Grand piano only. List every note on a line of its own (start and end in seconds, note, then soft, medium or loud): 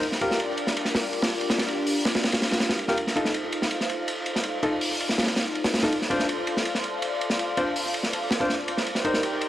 0.21 0.35 F4 medium
0.21 0.35 G4 medium
0.21 0.35 A#4 medium
2.88 2.96 F4 medium
2.88 2.96 G4 medium
2.88 2.96 A#4 medium
3.16 3.30 D#4 medium
3.16 3.30 F4 medium
3.16 3.30 A4 medium
4.63 4.72 D#4 medium
4.63 4.72 F4 medium
4.63 4.72 A4 medium
5.83 5.91 D#4 medium
5.83 5.91 F4 medium
5.83 5.91 A4 medium
6.10 6.24 D4 medium
6.10 6.24 F4 medium
6.10 6.24 C5 medium
7.57 7.66 D4 medium
7.57 7.66 F4 medium
7.57 7.66 C5 medium
8.40 8.49 D4 medium
8.40 8.49 F4 medium
8.40 8.49 C5 medium
9.05 9.19 D#4 medium
9.05 9.19 A#4 medium
9.05 9.19 C5 medium